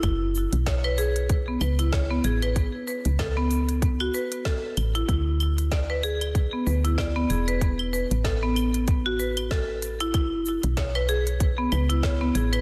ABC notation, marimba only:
X:1
M:4/4
L:1/16
Q:"Swing 16ths" 1/4=95
K:Emix
V:1 name="Marimba"
E z3 c B G z2 B, B E c B, G B | z2 B z A B,4 F B z A z2 E | E z3 d B G z2 B, B E d B, G B | z2 B z A B,4 F B z A z2 E |
E z3 c B G z2 B, B E c B, G B |]